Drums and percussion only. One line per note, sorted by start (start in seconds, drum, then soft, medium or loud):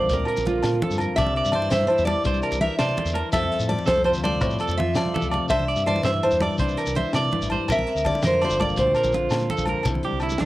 0.02 low conga medium
0.10 kick medium
0.10 closed hi-hat medium
0.10 shekere medium
0.20 high conga medium
0.20 low conga soft
0.25 closed hi-hat soft
0.25 low agogo medium
0.37 muted conga medium
0.37 shekere medium
0.45 closed hi-hat soft
0.45 high conga medium
0.45 low conga medium
0.56 low conga soft
0.63 snare medium
0.63 closed hi-hat medium
0.63 low agogo medium
0.63 shekere medium
0.74 high conga medium
0.82 closed hi-hat soft
0.82 muted conga loud
0.82 low conga loud
0.91 low conga soft
0.91 shekere medium
0.98 closed hi-hat soft
0.98 high conga medium
0.98 low conga soft
0.98 low agogo medium
0.98 shekere soft
1.17 kick medium
1.17 closed hi-hat medium
1.17 muted conga loud
1.17 low agogo medium
1.17 shekere medium
1.26 high conga medium
1.26 low conga medium
1.36 closed hi-hat soft
1.45 shekere medium
1.52 closed hi-hat soft
1.52 high conga medium
1.52 low agogo medium
1.62 muted conga medium
1.71 snare medium
1.71 closed hi-hat medium
1.71 low conga medium
1.71 shekere loud
1.81 high conga medium
1.88 closed hi-hat soft
1.88 low conga soft
1.88 low agogo medium
1.98 shekere medium
2.07 closed hi-hat soft
2.07 muted conga medium
2.07 high conga medium
2.07 low agogo medium
2.16 low conga medium
2.24 kick medium
2.24 closed hi-hat medium
2.24 shekere medium
2.33 high conga medium
2.33 low conga soft
2.33 shekere soft
2.42 closed hi-hat soft
2.42 low agogo medium
2.42 shekere soft
2.52 muted conga medium
2.52 shekere medium
2.61 closed hi-hat medium
2.61 high conga medium
2.61 low conga medium
2.70 low conga soft
2.79 snare medium
2.79 closed hi-hat medium
2.79 low agogo medium
2.79 shekere medium
2.89 high conga medium
2.97 closed hi-hat medium
2.97 muted conga medium
2.97 low conga loud
3.06 shekere medium
3.15 closed hi-hat medium
3.15 high conga medium
3.15 low agogo medium
3.32 kick medium
3.32 closed hi-hat medium
3.32 muted conga medium
3.32 low agogo medium
3.32 shekere loud
3.43 high conga medium
3.43 low conga medium
3.52 snare soft
3.52 closed hi-hat medium
3.59 shekere medium
3.69 closed hi-hat medium
3.69 high conga medium
3.69 low agogo medium
3.79 muted conga medium
3.86 snare medium
3.86 closed hi-hat medium
3.86 low conga medium
3.86 shekere loud
3.97 high conga medium
4.05 closed hi-hat soft
4.05 low conga soft
4.05 low agogo medium
4.14 shekere medium
4.24 closed hi-hat medium
4.24 muted conga medium
4.24 high conga medium
4.24 low agogo medium
4.35 low conga medium
4.41 kick medium
4.41 closed hi-hat medium
4.41 shekere medium
4.50 low conga soft
4.50 shekere soft
4.59 closed hi-hat soft
4.59 low agogo medium
4.59 shekere soft
4.68 muted conga medium
4.68 shekere medium
4.78 closed hi-hat medium
4.78 high conga loud
4.78 low conga medium
4.88 low conga soft
4.94 snare medium
4.94 closed hi-hat medium
4.94 low agogo medium
4.94 shekere medium
5.06 high conga medium
5.14 closed hi-hat soft
5.14 muted conga loud
5.14 low conga loud
5.22 shekere medium
5.31 closed hi-hat soft
5.31 high conga medium
5.31 low agogo medium
5.49 kick medium
5.49 closed hi-hat medium
5.49 muted conga loud
5.49 low agogo medium
5.49 shekere medium
5.59 high conga medium
5.59 low conga medium
5.68 closed hi-hat soft
5.76 shekere medium
5.86 closed hi-hat medium
5.86 high conga medium
5.86 low agogo medium
5.96 muted conga medium
6.03 snare medium
6.03 closed hi-hat medium
6.03 low conga medium
6.03 shekere medium
6.14 high conga medium
6.23 closed hi-hat soft
6.23 low conga soft
6.23 low agogo medium
6.31 shekere medium
6.41 closed hi-hat medium
6.41 muted conga medium
6.41 high conga loud
6.41 low agogo medium
6.51 low conga medium
6.58 kick medium
6.58 closed hi-hat medium
6.58 shekere medium
6.68 high conga medium
6.68 low conga soft
6.68 shekere soft
6.77 closed hi-hat medium
6.77 low agogo soft
6.77 shekere soft
6.86 muted conga medium
6.86 shekere medium
6.95 closed hi-hat medium
6.95 high conga medium
6.95 low conga medium
7.06 low conga soft
7.13 snare medium
7.13 closed hi-hat medium
7.13 low agogo medium
7.13 shekere medium
7.24 high conga medium
7.32 closed hi-hat soft
7.32 muted conga medium
7.32 low conga loud
7.42 shekere medium
7.50 closed hi-hat soft
7.50 high conga loud
7.50 low agogo medium
7.68 kick medium
7.68 closed hi-hat medium
7.68 muted conga loud
7.68 low agogo medium
7.68 shekere loud
7.79 high conga medium
7.79 low conga medium
7.87 snare soft
7.87 closed hi-hat soft
7.87 low conga soft
7.97 low conga soft
7.97 shekere medium
8.05 kick medium
8.05 closed hi-hat soft
8.05 high conga medium
8.05 low conga soft
8.05 low agogo medium
8.15 muted conga medium
8.22 snare medium
8.22 closed hi-hat medium
8.22 low conga loud
8.22 shekere loud
8.33 high conga medium
8.41 closed hi-hat soft
8.41 low conga soft
8.41 low agogo medium
8.41 shekere soft
8.50 low conga soft
8.50 shekere medium
8.60 kick medium
8.60 closed hi-hat soft
8.60 muted conga medium
8.60 high conga medium
8.60 low conga soft
8.60 low agogo medium
8.69 low conga medium
8.69 shekere soft
8.77 kick medium
8.77 closed hi-hat medium
8.77 shekere medium
8.87 high conga medium
8.95 closed hi-hat medium
8.95 low agogo medium
8.95 shekere soft
9.04 muted conga medium
9.04 shekere medium
9.12 closed hi-hat medium
9.12 high conga medium
9.12 low conga medium
9.12 shekere soft
9.30 snare medium
9.30 closed hi-hat medium
9.30 low agogo medium
9.30 shekere medium
9.39 high conga medium
9.39 shekere soft
9.50 closed hi-hat soft
9.50 muted conga medium
9.50 low conga medium
9.58 shekere medium
9.66 closed hi-hat medium
9.66 high conga medium
9.66 low agogo medium
9.83 kick medium
9.83 closed hi-hat medium
9.83 muted conga loud
9.83 low conga soft
9.83 low agogo medium
9.83 shekere loud
9.95 high conga medium
9.95 low conga medium
10.03 closed hi-hat soft
10.20 closed hi-hat soft
10.20 low conga soft
10.20 low agogo medium
10.20 shekere soft
10.29 muted conga medium
10.29 high conga medium
10.29 shekere medium
10.38 snare medium
10.38 closed hi-hat medium
10.38 low conga medium